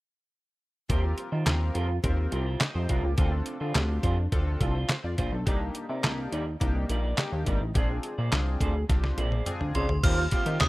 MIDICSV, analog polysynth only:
0, 0, Header, 1, 2, 480
1, 0, Start_track
1, 0, Tempo, 571429
1, 752, Time_signature, 4, 2, 24, 8
1, 8975, End_track
2, 0, Start_track
2, 0, Title_t, "Analog polysynth"
2, 0, Program_c, 0, 90
2, 752, Note_on_c, 0, 60, 80
2, 754, Note_on_c, 0, 65, 80
2, 756, Note_on_c, 0, 67, 77
2, 758, Note_on_c, 0, 70, 85
2, 1083, Note_off_c, 0, 60, 0
2, 1084, Note_off_c, 0, 65, 0
2, 1085, Note_off_c, 0, 67, 0
2, 1086, Note_off_c, 0, 70, 0
2, 1232, Note_on_c, 0, 60, 87
2, 1235, Note_on_c, 0, 65, 79
2, 1235, Note_on_c, 0, 67, 65
2, 1239, Note_on_c, 0, 70, 92
2, 1563, Note_off_c, 0, 60, 0
2, 1564, Note_off_c, 0, 65, 0
2, 1564, Note_off_c, 0, 67, 0
2, 1566, Note_off_c, 0, 70, 0
2, 1709, Note_on_c, 0, 60, 97
2, 1711, Note_on_c, 0, 65, 73
2, 1712, Note_on_c, 0, 67, 70
2, 1716, Note_on_c, 0, 70, 85
2, 2041, Note_off_c, 0, 60, 0
2, 2042, Note_off_c, 0, 65, 0
2, 2043, Note_off_c, 0, 67, 0
2, 2045, Note_off_c, 0, 70, 0
2, 2194, Note_on_c, 0, 75, 70
2, 2199, Note_on_c, 0, 67, 53
2, 2307, Note_off_c, 0, 75, 0
2, 2309, Note_off_c, 0, 67, 0
2, 2312, Note_on_c, 0, 72, 73
2, 2316, Note_on_c, 0, 63, 59
2, 2426, Note_off_c, 0, 72, 0
2, 2428, Note_off_c, 0, 63, 0
2, 2430, Note_on_c, 0, 70, 66
2, 2435, Note_on_c, 0, 62, 63
2, 2545, Note_off_c, 0, 70, 0
2, 2547, Note_off_c, 0, 62, 0
2, 2554, Note_on_c, 0, 67, 64
2, 2557, Note_on_c, 0, 58, 54
2, 2670, Note_on_c, 0, 60, 88
2, 2672, Note_on_c, 0, 62, 78
2, 2673, Note_on_c, 0, 65, 74
2, 2675, Note_on_c, 0, 69, 88
2, 2781, Note_off_c, 0, 67, 0
2, 2782, Note_off_c, 0, 58, 0
2, 3002, Note_off_c, 0, 60, 0
2, 3002, Note_off_c, 0, 62, 0
2, 3003, Note_off_c, 0, 65, 0
2, 3004, Note_off_c, 0, 69, 0
2, 3149, Note_on_c, 0, 60, 80
2, 3151, Note_on_c, 0, 62, 67
2, 3154, Note_on_c, 0, 65, 76
2, 3155, Note_on_c, 0, 67, 83
2, 3481, Note_off_c, 0, 60, 0
2, 3482, Note_off_c, 0, 62, 0
2, 3484, Note_off_c, 0, 65, 0
2, 3484, Note_off_c, 0, 67, 0
2, 3627, Note_on_c, 0, 60, 87
2, 3630, Note_on_c, 0, 62, 75
2, 3632, Note_on_c, 0, 65, 82
2, 3633, Note_on_c, 0, 69, 101
2, 3960, Note_off_c, 0, 60, 0
2, 3962, Note_off_c, 0, 62, 0
2, 3963, Note_off_c, 0, 65, 0
2, 3963, Note_off_c, 0, 69, 0
2, 4115, Note_on_c, 0, 72, 72
2, 4227, Note_off_c, 0, 72, 0
2, 4233, Note_on_c, 0, 74, 74
2, 4236, Note_on_c, 0, 65, 65
2, 4346, Note_off_c, 0, 74, 0
2, 4348, Note_off_c, 0, 65, 0
2, 4351, Note_on_c, 0, 72, 64
2, 4465, Note_off_c, 0, 72, 0
2, 4472, Note_on_c, 0, 69, 58
2, 4477, Note_on_c, 0, 60, 55
2, 4583, Note_on_c, 0, 58, 81
2, 4585, Note_on_c, 0, 62, 76
2, 4588, Note_on_c, 0, 63, 81
2, 4590, Note_on_c, 0, 67, 88
2, 4700, Note_off_c, 0, 69, 0
2, 4702, Note_off_c, 0, 60, 0
2, 4918, Note_off_c, 0, 58, 0
2, 4919, Note_off_c, 0, 62, 0
2, 4920, Note_off_c, 0, 63, 0
2, 4922, Note_off_c, 0, 67, 0
2, 5066, Note_on_c, 0, 58, 84
2, 5068, Note_on_c, 0, 62, 81
2, 5069, Note_on_c, 0, 63, 76
2, 5072, Note_on_c, 0, 67, 86
2, 5400, Note_off_c, 0, 58, 0
2, 5401, Note_off_c, 0, 62, 0
2, 5401, Note_off_c, 0, 63, 0
2, 5403, Note_off_c, 0, 67, 0
2, 5545, Note_on_c, 0, 58, 89
2, 5547, Note_on_c, 0, 62, 79
2, 5550, Note_on_c, 0, 63, 81
2, 5553, Note_on_c, 0, 67, 98
2, 5879, Note_off_c, 0, 58, 0
2, 5880, Note_off_c, 0, 62, 0
2, 5882, Note_off_c, 0, 63, 0
2, 5883, Note_off_c, 0, 67, 0
2, 6026, Note_on_c, 0, 58, 76
2, 6028, Note_on_c, 0, 62, 73
2, 6030, Note_on_c, 0, 63, 82
2, 6033, Note_on_c, 0, 67, 103
2, 6360, Note_off_c, 0, 58, 0
2, 6361, Note_off_c, 0, 62, 0
2, 6361, Note_off_c, 0, 63, 0
2, 6363, Note_off_c, 0, 67, 0
2, 6503, Note_on_c, 0, 60, 81
2, 6506, Note_on_c, 0, 62, 75
2, 6509, Note_on_c, 0, 65, 70
2, 6513, Note_on_c, 0, 68, 86
2, 6838, Note_off_c, 0, 60, 0
2, 6839, Note_off_c, 0, 62, 0
2, 6841, Note_off_c, 0, 65, 0
2, 6843, Note_off_c, 0, 68, 0
2, 6987, Note_on_c, 0, 60, 85
2, 6988, Note_on_c, 0, 62, 80
2, 6992, Note_on_c, 0, 65, 73
2, 6994, Note_on_c, 0, 68, 79
2, 7320, Note_off_c, 0, 60, 0
2, 7321, Note_off_c, 0, 62, 0
2, 7322, Note_off_c, 0, 65, 0
2, 7324, Note_off_c, 0, 68, 0
2, 7466, Note_on_c, 0, 60, 78
2, 7468, Note_on_c, 0, 62, 80
2, 7471, Note_on_c, 0, 65, 74
2, 7471, Note_on_c, 0, 67, 95
2, 7800, Note_off_c, 0, 60, 0
2, 7801, Note_off_c, 0, 62, 0
2, 7802, Note_off_c, 0, 65, 0
2, 7802, Note_off_c, 0, 67, 0
2, 7947, Note_on_c, 0, 60, 89
2, 7948, Note_on_c, 0, 62, 79
2, 7950, Note_on_c, 0, 65, 78
2, 7952, Note_on_c, 0, 68, 102
2, 8280, Note_off_c, 0, 60, 0
2, 8280, Note_off_c, 0, 62, 0
2, 8282, Note_off_c, 0, 65, 0
2, 8283, Note_off_c, 0, 68, 0
2, 8425, Note_on_c, 0, 58, 87
2, 8429, Note_on_c, 0, 60, 76
2, 8429, Note_on_c, 0, 65, 76
2, 8434, Note_on_c, 0, 67, 94
2, 8594, Note_off_c, 0, 58, 0
2, 8596, Note_off_c, 0, 60, 0
2, 8596, Note_off_c, 0, 65, 0
2, 8598, Note_off_c, 0, 67, 0
2, 8666, Note_on_c, 0, 58, 71
2, 8667, Note_on_c, 0, 60, 70
2, 8670, Note_on_c, 0, 65, 67
2, 8672, Note_on_c, 0, 67, 85
2, 8834, Note_off_c, 0, 58, 0
2, 8835, Note_off_c, 0, 60, 0
2, 8836, Note_off_c, 0, 65, 0
2, 8837, Note_off_c, 0, 67, 0
2, 8908, Note_on_c, 0, 58, 74
2, 8911, Note_on_c, 0, 60, 77
2, 8912, Note_on_c, 0, 65, 82
2, 8916, Note_on_c, 0, 67, 96
2, 8975, Note_off_c, 0, 58, 0
2, 8975, Note_off_c, 0, 60, 0
2, 8975, Note_off_c, 0, 65, 0
2, 8975, Note_off_c, 0, 67, 0
2, 8975, End_track
0, 0, End_of_file